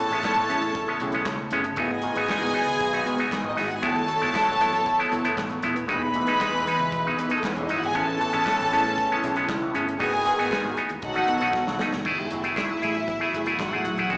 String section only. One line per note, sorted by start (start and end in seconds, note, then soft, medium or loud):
0.00 1.49 A4 loud
0.00 1.49 A5 loud
1.77 3.40 G#4 loud
1.77 3.40 G#5 loud
3.48 3.57 D#4 medium
3.48 3.57 D#5 medium
3.58 3.66 E4 medium
3.58 3.66 E5 medium
3.66 3.74 F#4 medium
3.66 3.75 F#5 medium
3.75 3.83 G#4 medium
3.75 3.84 G#5 medium
3.85 5.61 A4 loud
3.85 5.61 A5 loud
5.90 7.27 B4 medium
5.90 7.28 B5 loud
7.36 7.44 A3 medium
7.36 7.44 A4 medium
7.43 7.52 B3 medium
7.43 7.52 B4 medium
7.53 7.61 C#4 medium
7.53 7.61 C#5 medium
7.62 7.70 D#4 medium
7.62 7.70 D#5 medium
7.69 7.78 E4 medium
7.69 7.78 E5 medium
7.78 7.86 F#4 medium
7.78 7.86 F#5 medium
7.86 7.94 G#4 medium
7.86 7.95 G#5 loud
7.96 9.71 A4 loud
7.96 9.71 A5 loud
10.00 10.75 G#4 loud
10.00 10.75 G#5 loud
11.03 11.78 F#4 medium
11.03 11.78 F#5 loud
12.07 13.57 E4 medium
12.07 13.57 E5 loud
13.59 14.09 F#4 medium
13.59 14.09 F#5 medium
14.11 14.18 G#4 medium
14.11 14.18 G#5 loud